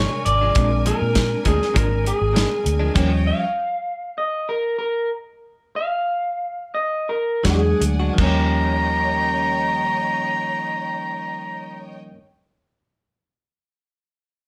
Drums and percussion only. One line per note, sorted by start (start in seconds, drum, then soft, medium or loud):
0.26 closed hi-hat medium
0.55 kick loud
0.55 closed hi-hat medium
0.86 closed hi-hat medium
1.15 kick medium
1.15 snare loud
1.15 closed hi-hat medium
1.45 kick medium
1.45 closed hi-hat medium
1.62 snare soft
1.76 kick loud
1.76 closed hi-hat medium
2.06 closed hi-hat medium
2.36 snare loud
2.36 closed hi-hat medium
2.66 closed hi-hat medium
2.96 kick loud
2.96 closed hi-hat medium
2.96 crash medium
7.45 kick medium
7.45 snare loud
7.45 closed hi-hat medium
7.82 closed hi-hat medium
8.18 kick loud
8.18 crash medium